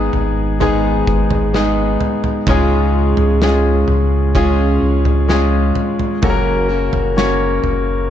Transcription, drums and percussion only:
0.13 floor tom
0.61 floor tom
1.07 kick
1.31 floor tom
1.54 snare
2.01 floor tom
2.24 floor tom
2.47 kick, floor tom
3.17 floor tom
3.42 snare
3.88 floor tom
4.35 kick, floor tom
5.05 floor tom
5.29 snare
5.75 floor tom
5.99 floor tom
6.23 kick, floor tom
6.93 floor tom
7.18 snare
7.64 floor tom

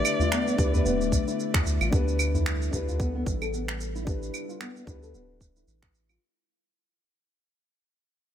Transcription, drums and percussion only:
0.05 claves, shaker
0.19 udu, shaker
0.32 finger snap, shaker
0.48 shaker
0.58 kick, shaker
0.74 udu, shaker
0.86 shaker
1.01 shaker
1.12 kick, shaker
1.28 shaker
1.40 shaker
1.54 finger snap, kick, udu, shaker
1.66 shaker
1.81 claves, shaker
1.93 kick, shaker
2.08 shaker
2.19 claves, shaker
2.35 udu, shaker
2.46 finger snap, shaker
2.62 shaker
2.73 kick, shaker
2.89 udu, shaker
3.00 kick, shaker
3.26 kick, shaker
3.42 claves, shaker
3.54 shaker
3.68 finger snap
3.80 shaker
3.96 shaker
4.07 kick, shaker
4.23 shaker
4.34 claves, shaker
4.50 shaker
4.61 finger snap, shaker
4.76 shaker
4.87 kick, shaker
5.03 shaker
5.14 shaker
5.41 kick, shaker
5.56 shaker
5.68 shaker
5.83 finger snap, kick
5.95 shaker
6.09 claves, shaker

